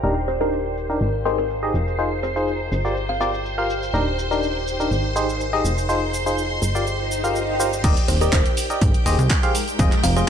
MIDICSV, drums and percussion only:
0, 0, Header, 1, 2, 480
1, 0, Start_track
1, 0, Key_signature, -3, "major"
1, 0, Tempo, 487805
1, 34, Time_signature, 4, 2, 24, 8
1, 10126, End_track
2, 0, Start_track
2, 0, Title_t, "Drums"
2, 39, Note_on_c, 9, 69, 32
2, 138, Note_off_c, 9, 69, 0
2, 279, Note_on_c, 9, 69, 68
2, 377, Note_off_c, 9, 69, 0
2, 406, Note_on_c, 9, 69, 39
2, 505, Note_off_c, 9, 69, 0
2, 519, Note_on_c, 9, 69, 31
2, 618, Note_off_c, 9, 69, 0
2, 760, Note_on_c, 9, 69, 71
2, 858, Note_off_c, 9, 69, 0
2, 887, Note_on_c, 9, 69, 41
2, 985, Note_off_c, 9, 69, 0
2, 1000, Note_on_c, 9, 69, 30
2, 1098, Note_off_c, 9, 69, 0
2, 1239, Note_on_c, 9, 69, 73
2, 1338, Note_off_c, 9, 69, 0
2, 1367, Note_on_c, 9, 69, 42
2, 1465, Note_off_c, 9, 69, 0
2, 1480, Note_on_c, 9, 69, 31
2, 1578, Note_off_c, 9, 69, 0
2, 1720, Note_on_c, 9, 69, 70
2, 1818, Note_off_c, 9, 69, 0
2, 1847, Note_on_c, 9, 69, 41
2, 1945, Note_off_c, 9, 69, 0
2, 1959, Note_on_c, 9, 69, 33
2, 2058, Note_off_c, 9, 69, 0
2, 2200, Note_on_c, 9, 69, 71
2, 2298, Note_off_c, 9, 69, 0
2, 2327, Note_on_c, 9, 69, 42
2, 2425, Note_off_c, 9, 69, 0
2, 2440, Note_on_c, 9, 69, 32
2, 2538, Note_off_c, 9, 69, 0
2, 2679, Note_on_c, 9, 69, 75
2, 2778, Note_off_c, 9, 69, 0
2, 2807, Note_on_c, 9, 69, 42
2, 2905, Note_off_c, 9, 69, 0
2, 2920, Note_on_c, 9, 69, 32
2, 3018, Note_off_c, 9, 69, 0
2, 3160, Note_on_c, 9, 69, 74
2, 3258, Note_off_c, 9, 69, 0
2, 3287, Note_on_c, 9, 69, 43
2, 3385, Note_off_c, 9, 69, 0
2, 3400, Note_on_c, 9, 69, 32
2, 3499, Note_off_c, 9, 69, 0
2, 3640, Note_on_c, 9, 69, 76
2, 3739, Note_off_c, 9, 69, 0
2, 3767, Note_on_c, 9, 69, 41
2, 3866, Note_off_c, 9, 69, 0
2, 3881, Note_on_c, 9, 69, 34
2, 3979, Note_off_c, 9, 69, 0
2, 4120, Note_on_c, 9, 69, 73
2, 4219, Note_off_c, 9, 69, 0
2, 4248, Note_on_c, 9, 69, 43
2, 4346, Note_off_c, 9, 69, 0
2, 4360, Note_on_c, 9, 69, 33
2, 4459, Note_off_c, 9, 69, 0
2, 4600, Note_on_c, 9, 69, 75
2, 4699, Note_off_c, 9, 69, 0
2, 4727, Note_on_c, 9, 69, 42
2, 4826, Note_off_c, 9, 69, 0
2, 4840, Note_on_c, 9, 69, 31
2, 4939, Note_off_c, 9, 69, 0
2, 5080, Note_on_c, 9, 69, 77
2, 5178, Note_off_c, 9, 69, 0
2, 5207, Note_on_c, 9, 69, 44
2, 5306, Note_off_c, 9, 69, 0
2, 5320, Note_on_c, 9, 69, 33
2, 5418, Note_off_c, 9, 69, 0
2, 5560, Note_on_c, 9, 69, 76
2, 5658, Note_off_c, 9, 69, 0
2, 5687, Note_on_c, 9, 69, 43
2, 5785, Note_off_c, 9, 69, 0
2, 5799, Note_on_c, 9, 69, 33
2, 5898, Note_off_c, 9, 69, 0
2, 6039, Note_on_c, 9, 69, 72
2, 6138, Note_off_c, 9, 69, 0
2, 6166, Note_on_c, 9, 69, 42
2, 6265, Note_off_c, 9, 69, 0
2, 6279, Note_on_c, 9, 69, 33
2, 6378, Note_off_c, 9, 69, 0
2, 6519, Note_on_c, 9, 69, 75
2, 6618, Note_off_c, 9, 69, 0
2, 6646, Note_on_c, 9, 69, 43
2, 6745, Note_off_c, 9, 69, 0
2, 6759, Note_on_c, 9, 69, 32
2, 6858, Note_off_c, 9, 69, 0
2, 6999, Note_on_c, 9, 69, 77
2, 7098, Note_off_c, 9, 69, 0
2, 7126, Note_on_c, 9, 69, 45
2, 7225, Note_off_c, 9, 69, 0
2, 7239, Note_on_c, 9, 69, 32
2, 7338, Note_off_c, 9, 69, 0
2, 7479, Note_on_c, 9, 69, 76
2, 7577, Note_off_c, 9, 69, 0
2, 7606, Note_on_c, 9, 69, 41
2, 7705, Note_off_c, 9, 69, 0
2, 7714, Note_on_c, 9, 36, 122
2, 7714, Note_on_c, 9, 42, 87
2, 7714, Note_on_c, 9, 49, 109
2, 7719, Note_on_c, 9, 69, 35
2, 7812, Note_off_c, 9, 42, 0
2, 7812, Note_off_c, 9, 49, 0
2, 7813, Note_off_c, 9, 36, 0
2, 7817, Note_off_c, 9, 69, 0
2, 7841, Note_on_c, 9, 42, 56
2, 7940, Note_off_c, 9, 42, 0
2, 7954, Note_on_c, 9, 46, 102
2, 7959, Note_on_c, 9, 69, 77
2, 8052, Note_off_c, 9, 46, 0
2, 8057, Note_off_c, 9, 69, 0
2, 8081, Note_on_c, 9, 42, 38
2, 8086, Note_on_c, 9, 69, 45
2, 8179, Note_off_c, 9, 42, 0
2, 8185, Note_off_c, 9, 69, 0
2, 8194, Note_on_c, 9, 36, 122
2, 8194, Note_on_c, 9, 39, 126
2, 8194, Note_on_c, 9, 42, 86
2, 8199, Note_on_c, 9, 69, 34
2, 8292, Note_off_c, 9, 39, 0
2, 8292, Note_off_c, 9, 42, 0
2, 8293, Note_off_c, 9, 36, 0
2, 8297, Note_off_c, 9, 69, 0
2, 8321, Note_on_c, 9, 42, 56
2, 8419, Note_off_c, 9, 42, 0
2, 8434, Note_on_c, 9, 46, 95
2, 8439, Note_on_c, 9, 69, 79
2, 8532, Note_off_c, 9, 46, 0
2, 8537, Note_off_c, 9, 69, 0
2, 8561, Note_on_c, 9, 42, 39
2, 8566, Note_on_c, 9, 69, 44
2, 8659, Note_off_c, 9, 42, 0
2, 8665, Note_off_c, 9, 69, 0
2, 8674, Note_on_c, 9, 36, 122
2, 8674, Note_on_c, 9, 42, 81
2, 8679, Note_on_c, 9, 69, 33
2, 8772, Note_off_c, 9, 42, 0
2, 8773, Note_off_c, 9, 36, 0
2, 8777, Note_off_c, 9, 69, 0
2, 8801, Note_on_c, 9, 42, 55
2, 8899, Note_off_c, 9, 42, 0
2, 8914, Note_on_c, 9, 46, 105
2, 8919, Note_on_c, 9, 69, 81
2, 9012, Note_off_c, 9, 46, 0
2, 9018, Note_off_c, 9, 69, 0
2, 9041, Note_on_c, 9, 42, 39
2, 9046, Note_on_c, 9, 69, 46
2, 9140, Note_off_c, 9, 42, 0
2, 9145, Note_off_c, 9, 69, 0
2, 9154, Note_on_c, 9, 36, 118
2, 9154, Note_on_c, 9, 39, 124
2, 9154, Note_on_c, 9, 42, 85
2, 9159, Note_on_c, 9, 69, 35
2, 9253, Note_off_c, 9, 36, 0
2, 9253, Note_off_c, 9, 39, 0
2, 9253, Note_off_c, 9, 42, 0
2, 9258, Note_off_c, 9, 69, 0
2, 9281, Note_on_c, 9, 42, 56
2, 9380, Note_off_c, 9, 42, 0
2, 9395, Note_on_c, 9, 46, 93
2, 9400, Note_on_c, 9, 69, 78
2, 9493, Note_off_c, 9, 46, 0
2, 9498, Note_off_c, 9, 69, 0
2, 9522, Note_on_c, 9, 42, 38
2, 9527, Note_on_c, 9, 69, 45
2, 9620, Note_off_c, 9, 42, 0
2, 9625, Note_off_c, 9, 69, 0
2, 9635, Note_on_c, 9, 36, 127
2, 9635, Note_on_c, 9, 42, 84
2, 9640, Note_on_c, 9, 69, 33
2, 9733, Note_off_c, 9, 36, 0
2, 9733, Note_off_c, 9, 42, 0
2, 9739, Note_off_c, 9, 69, 0
2, 9762, Note_on_c, 9, 39, 39
2, 9762, Note_on_c, 9, 42, 54
2, 9860, Note_off_c, 9, 39, 0
2, 9861, Note_off_c, 9, 42, 0
2, 9875, Note_on_c, 9, 46, 108
2, 9880, Note_on_c, 9, 69, 74
2, 9973, Note_off_c, 9, 46, 0
2, 9978, Note_off_c, 9, 69, 0
2, 10002, Note_on_c, 9, 42, 38
2, 10007, Note_on_c, 9, 69, 44
2, 10101, Note_off_c, 9, 42, 0
2, 10106, Note_off_c, 9, 69, 0
2, 10126, End_track
0, 0, End_of_file